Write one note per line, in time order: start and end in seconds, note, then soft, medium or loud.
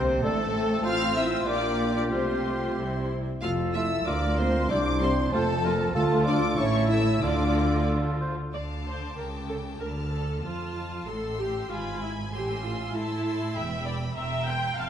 0.00 0.23 C2 medium
0.00 0.23 C3 medium
0.00 0.23 C4 medium
0.00 0.22 C5 medium
0.00 0.24 C5 medium
0.23 0.84 A1 medium
0.23 0.83 A2 medium
0.23 0.84 A3 medium
0.23 0.38 D4 medium
0.23 0.84 A4 medium
0.23 0.86 A4 medium
0.23 0.84 A5 medium
0.53 1.45 C4 medium
0.84 1.43 A1 medium
0.84 1.43 A2 medium
0.84 1.43 C4 medium
0.84 2.07 F4 medium
0.84 2.80 F4 medium
0.84 1.00 F4 medium
0.84 1.49 C5 medium
0.84 1.15 F5 medium
0.84 1.16 F5 medium
0.84 1.16 F6 loud
1.15 1.31 E4 medium
1.15 1.46 E5 medium
1.15 1.25 E5 medium
1.15 1.48 E6 medium
1.46 2.12 A#1 medium
1.46 2.11 A#2 medium
1.46 2.10 A#3 medium
1.46 1.94 D4 medium
1.46 3.11 G4 medium
1.46 1.94 D5 medium
1.46 1.95 D5 medium
1.46 1.95 D6 medium
1.95 2.11 D4 soft
1.95 2.01 D5 medium
1.95 2.03 D5 medium
1.95 2.03 D6 medium
2.11 2.76 C2 soft
2.11 2.76 C3 soft
2.11 2.77 A3 soft
2.11 3.10 C4 medium
2.11 2.76 F4 soft
2.11 3.08 G4 medium
2.11 3.08 C5 soft
2.11 3.09 C5 medium
2.11 3.09 C6 medium
2.77 3.21 C2 soft
2.77 3.21 C3 soft
2.77 3.22 G3 soft
2.77 3.22 E4 soft
2.77 3.11 E4 soft
3.41 3.99 F1 medium
3.41 3.99 F2 medium
3.41 3.50 A3 soft
3.41 3.50 F4 medium
3.41 3.72 F4 medium
3.41 4.03 F4 medium
3.41 4.09 A4 medium
3.41 3.72 F5 medium
3.41 3.50 F5 medium
3.41 3.52 F6 medium
3.74 3.82 A3 medium
3.74 4.07 E4 medium
3.74 3.82 F4 soft
3.74 4.06 E5 medium
3.74 3.82 E5 medium
3.74 4.06 E6 medium
4.05 4.62 D2 medium
4.05 4.63 D2 medium
4.05 4.15 A#3 medium
4.05 4.38 D4 medium
4.05 4.66 F4 medium
4.05 4.15 F4 medium
4.05 4.71 F4 medium
4.05 4.70 A#4 medium
4.05 4.37 D5 medium
4.05 4.38 D5 medium
4.05 4.39 D6 medium
4.38 4.46 A#3 medium
4.38 4.69 C4 medium
4.38 4.46 F4 soft
4.38 4.70 C5 medium
4.38 4.69 C6 medium
4.69 5.25 C2 medium
4.69 5.26 C2 medium
4.69 4.78 G3 medium
4.69 5.34 D4 medium
4.69 5.01 D4 medium
4.69 4.78 E4 medium
4.69 5.35 E4 medium
4.69 5.32 C5 medium
4.69 4.77 D5 medium
4.69 4.76 D5 medium
4.69 5.01 D6 loud
5.01 5.09 G3 medium
5.01 5.33 C4 medium
5.01 5.09 E4 medium
5.01 5.10 C5 medium
5.01 5.32 C5 medium
5.01 5.33 C6 medium
5.32 5.88 F1 medium
5.32 5.88 F2 medium
5.32 5.94 A3 medium
5.32 5.41 A3 medium
5.32 5.94 C4 medium
5.32 5.95 F4 medium
5.32 5.41 F4 medium
5.32 5.93 A4 medium
5.32 5.92 A4 medium
5.32 5.47 C5 medium
5.32 5.93 A5 medium
5.64 5.73 A3 medium
5.64 5.72 F4 medium
5.64 5.94 A#4 medium
5.93 6.54 D2 medium
5.93 6.54 D3 medium
5.93 6.54 A3 medium
5.93 6.26 A3 medium
5.93 6.54 F4 medium
5.93 6.60 F4 medium
5.93 6.25 A4 medium
5.93 6.57 A4 medium
5.93 6.04 A4 medium
5.93 6.26 A5 medium
6.25 6.41 D4 medium
6.25 6.57 D5 medium
6.25 6.36 D5 medium
6.25 6.57 D6 medium
6.58 7.21 A1 medium
6.58 7.21 A2 medium
6.58 7.21 A3 medium
6.58 6.89 C#4 medium
6.58 7.23 E4 medium
6.58 7.21 A4 medium
6.58 6.90 C#5 medium
6.58 6.90 C#6 medium
6.90 7.23 E4 medium
6.90 7.23 E5 medium
6.90 7.22 E5 medium
6.90 7.22 E6 medium
7.23 8.33 D2 medium
7.23 8.33 D3 medium
7.23 8.31 A3 medium
7.23 7.88 D4 medium
7.23 8.31 F4 medium
7.23 8.19 F4 medium
7.23 8.20 F4 medium
7.23 7.81 A4 medium
7.23 7.87 D5 medium
7.23 7.88 D6 medium
7.88 8.18 A4 medium
8.21 8.36 C5 medium
8.53 9.14 D2 soft
8.53 9.14 D3 soft
8.53 8.61 D5 medium
8.53 9.15 F5 soft
8.53 9.80 A5 soft
8.53 9.78 D6 soft
8.86 9.17 C5 soft
9.18 9.80 C#2 soft
9.18 9.80 C#3 soft
9.18 9.26 A#4 soft
9.18 9.82 G5 soft
9.49 9.57 A4 soft
9.81 10.42 D2 soft
9.81 10.42 D3 soft
9.81 9.89 A#4 medium
9.81 10.42 A5 soft
9.81 10.43 F6 soft
10.12 10.43 A4 soft
10.43 11.07 F2 soft
10.43 11.07 F3 soft
10.43 11.06 F4 medium
10.43 11.05 A5 soft
10.43 11.06 F6 soft
11.06 11.69 A1 soft
11.06 11.69 A2 soft
11.06 11.39 A4 medium
11.06 11.70 C6 soft
11.06 11.70 E6 soft
11.39 11.71 G4 medium
11.70 12.32 G#1 soft
11.70 12.32 G#2 soft
11.70 12.02 F4 medium
11.70 12.95 G#5 soft
11.70 12.33 B5 soft
11.70 12.34 G#6 soft
12.02 12.10 E4 medium
12.33 12.95 A1 soft
12.33 12.95 A2 soft
12.33 12.63 G4 medium
12.33 12.93 C6 soft
12.33 12.94 E6 soft
12.64 12.95 F4 medium
12.94 13.55 A2 soft
12.94 13.55 A3 soft
12.94 13.56 E4 medium
12.94 13.56 A5 soft
12.94 13.25 C6 soft
12.94 13.55 E6 soft
13.26 13.56 C6 medium
13.55 14.16 E1 medium
13.55 14.16 E2 medium
13.55 13.86 E5 medium
13.55 14.15 G5 soft
13.55 14.17 B5 soft
13.55 14.16 E6 soft
13.86 13.94 D5 medium
14.16 14.77 E1 medium
14.16 14.77 E2 soft
14.16 14.47 E5 medium
14.16 14.77 G5 soft
14.16 14.77 A#5 soft
14.16 14.89 C6 medium
14.47 14.78 G5 medium
14.78 14.89 F1 medium
14.78 14.89 F2 medium
14.78 14.89 F5 medium
14.78 14.89 A5 soft